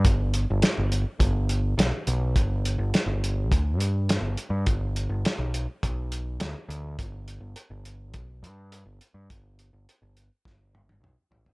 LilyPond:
<<
  \new Staff \with { instrumentName = "Picked electric bass" } { \clef bass \time 4/4 \key g \major \tempo 4 = 104 g,,8. g,,16 r16 g,,8 r16 g,,4 b,,16 r16 b,,8 | g,,8. g,,16 r16 g,,8. d,8 g,8. g,,16 r16 g,16 | g,,8. g,,16 r16 b,,8 r16 b,,4 d,16 r16 d,8 | g,,8. g,,16 r16 g,,8. b,,8 g,8. g,,16 r16 g,16 |
g,,8. g,,16 r16 g,,8 r16 g,,4 b,,16 r16 a,,16 g,,16 | }
  \new DrumStaff \with { instrumentName = "Drums" } \drummode { \time 4/4 <hh bd>8 hh8 <hh sn>8 hh8 <hh bd>8 hh8 <hh sn>8 hh8 | <hh bd>8 hh8 <hh sn>8 hh8 <hh bd>8 hh8 <hh sn>8 hh8 | <hh bd>8 hh8 <hh sn>8 hh8 <hh bd>8 hh8 <hh sn>8 hh8 | <hh bd>8 hh8 hh8 hh8 <hh bd>8 hh8 hh8 hh8 |
<hh bd>8 hh8 hh8 hh8 <bd sn>8 tommh16 tommh16 toml8 tomfh16 tomfh16 | }
>>